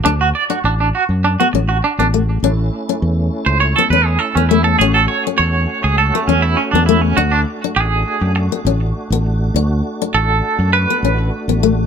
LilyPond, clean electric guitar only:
\new Staff \with { instrumentName = "Clean electric guitar" } { \time 4/4 \key a \major \tempo 4 = 101 d'16 fis'16 d''16 fis'16 d'16 d'16 fis'16 r16 d'16 fis'16 r16 fis'16 d'16 d'16 r8 | r4. r16 c''16 cis''16 a'16 b'16 gis'16 a'16 cis'16 e'16 a'16 | gis'16 a'16 cis''16 r16 cis''8. gis'16 a'16 a16 cis'16 e'16 cis'16 d'16 e'16 cis'16 | fis'16 d'16 r8 gis'4 r2 |
r4 a'4 b'4 r4 | }